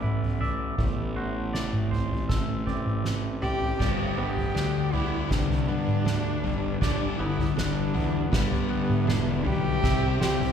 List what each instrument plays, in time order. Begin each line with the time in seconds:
Already playing: fingered electric bass A1, ambient pad E3 A3 B3, clean electric guitar B3 A4 E5
0.02 clean electric guitar E4 B4, mid tom
0.22 floor tom
0.40 clean electric guitar D5 E5, floor tom
0.78 fingered electric bass A1, ambient pad D3 A3 C4, clean electric guitar A3, kick, floor tom
1.16 clean electric guitar F#4 C5
1.54 clean electric guitar D5, snare
1.73 mid tom
1.91 clean electric guitar C5, floor tom
2.11 floor tom
2.29 clean electric guitar A4, kick, snare
2.67 clean electric guitar C4 D5, kick
2.86 mid tom
3.05 snare
3.42 cello G4, clean electric guitar D5, floor tom
3.62 floor tom
3.79 fingered electric bass G1, distorted electric guitar G2 D3 G3, clean electric guitar G3 D5, ambient pad G4 B4 D5 B5, kick, snare, floor tom, crash
4.17 fingered electric bass G1, distorted electric guitar G2 D3, clean electric guitar B3 B4, cello G4
4.37 floor tom
4.55 fingered electric bass D2, distorted electric guitar G2 D3, clean electric guitar D4, snare
4.93 distorted electric guitar G2 D3 G3, clean electric guitar B3 D5, cello E4, floor tom
5.30 fingered electric bass C2, distorted electric guitar G2 D3, clean electric guitar G3, cello D4, kick, snare
5.50 floor tom
5.68 distorted electric guitar G2 D3, fingered electric bass G2, clean electric guitar B3 B4
5.87 mid tom
6.05 fingered electric bass D2, distorted electric guitar G2 D3, clean electric guitar D4, snare
6.44 fingered electric bass G1, distorted electric guitar G2 D3, clean electric guitar G3, floor tom
6.81 fingered electric bass G1, distorted electric guitar G2 D3 G3, clean electric guitar G3 D5, cello D4, ambient pad E5, kick, snare, floor tom
7.19 fingered electric bass G1, distorted electric guitar G2 D3, clean electric guitar B3 A4, cello E4
7.38 floor tom
7.57 fingered electric bass G1, distorted electric guitar G2 D3, clean electric guitar D4, cello D4, snare
7.94 fingered electric bass E2, distorted electric guitar G2 D3, clean electric guitar B3, floor tom
8.32 distorted electric guitar G2 D3 G3, fingered electric bass G2, clean electric guitar G3 B4, cello B3, kick, snare
8.52 floor tom
8.69 distorted electric guitar G2 D3, clean electric guitar B3
8.89 mid tom
9.07 fingered electric bass E1, distorted electric guitar G2 D3, clean electric guitar D4, snare
9.45 fingered electric bass B1, distorted electric guitar G2 D3, clean electric guitar G3 B4, cello G4, floor tom
9.83 fingered electric bass C2, distorted electric guitar C3 G3 C4, clean electric guitar C3 E5, ambient pad G4 D5 C6, kick, snare, floor tom
10.20 fingered electric bass C2, distorted electric guitar C3 G3, clean electric guitar G3 C5, cello G4, snare
10.40 floor tom